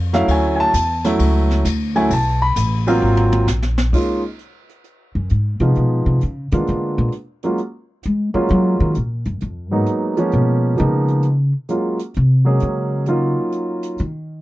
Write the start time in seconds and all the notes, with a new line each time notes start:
Already playing: F2
0.13 F#3 A3 C#4 E4 F5, snare
0.28 D2 G#5, kick, ride
0.56 G#5
0.60 A5
0.74 E2, kick, hi-hat pedal, ride
1.04 F#3 A3 C#4 E4, snare, ride
1.19 C#2, kick, ride
1.50 snare
1.65 D2, kick, hi-hat pedal, ride
1.95 F#3 A3 C#4 E4 G#5, ride
2.11 B1 A5, kick, ride
2.42 B5
2.56 A1, kick, hi-hat pedal, ride
2.87 F#3 A#3 C4 F4, ride
3.02 G#1
3.17 mid tom
3.32 mid tom
3.47 A#1, snare, hi-hat pedal
3.63 snare
3.78 snare
3.93 G#3 A#3 C#4 D#4 F4, kick, crash
4.39 closed hi-hat
4.69 closed hi-hat
4.84 closed hi-hat
5.15 F#2
5.29 G#2, closed hi-hat
5.60 C3 F3 G#3 B3 D#4 F4, closed hi-hat
5.75 B2, closed hi-hat
6.06 C3
6.21 C#3, closed hi-hat
6.51 D#3 G#3 A#3 B3 D4 F4, closed hi-hat
6.67 D3, closed hi-hat
6.98 A#2
7.12 closed hi-hat
7.43 F#3 G#3 A#3 C#4 F4, closed hi-hat
7.58 closed hi-hat
8.03 G#3, closed hi-hat
8.34 F3 F#3 G#3 A#3 C#4 F4
8.49 F#3, closed hi-hat
8.80 D#3
8.95 A#2, closed hi-hat
9.25 F#2, closed hi-hat
9.40 F2, closed hi-hat
9.71 G#2 F#3 G#3 A#3 B3 D#4
9.86 closed hi-hat
10.17 F3 G#3 A#3 B3 C#4, closed hi-hat
10.32 B2, closed hi-hat
10.77 C#3 F3 G#3 A#3 B3 D#4, closed hi-hat
11.08 closed hi-hat
11.23 closed hi-hat
11.69 F#3 G#3 A#3 C#4 F4, closed hi-hat
11.99 closed hi-hat
12.14 C3, closed hi-hat
12.45 F#3 G#3 A#3 C#4 G#4
12.60 C#3, closed hi-hat
13.06 F#3 A#3 C#4 D#4 F4, closed hi-hat
13.52 closed hi-hat
13.83 closed hi-hat
13.98 D#3, closed hi-hat